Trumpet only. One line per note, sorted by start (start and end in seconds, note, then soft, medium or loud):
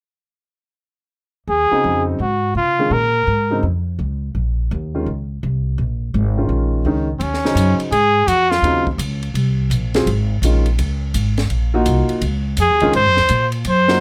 1.50 2.04 G#4 medium
2.21 2.54 F#4 medium
2.57 2.94 F4 medium
2.93 3.64 A#4 medium
7.19 7.24 C4 medium
7.19 7.81 C#4 medium
7.92 8.29 G#4 loud
8.28 8.52 F#4 loud
8.50 8.87 F4 medium
12.61 12.93 G#4 medium
12.96 13.49 C5 loud
13.69 14.00 C5 medium